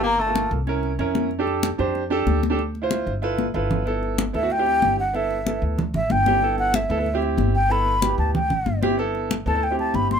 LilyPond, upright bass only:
\new Staff \with { instrumentName = "Upright bass" } { \clef bass \time 4/4 \key g \mixolydian \tempo 4 = 188 g,,4. c,4. f,4~ | f,4. f,4. d,4~ | d,4. g,,4. g,,4~ | \key g \major g,,4. d,4. g,,4~ |
g,,4. d,4 a,,8 g,,4~ | g,,4. d,4. g,,4~ | g,,4. d,4 a,,8 g,,4~ | g,,4. d,4. g,,4 | }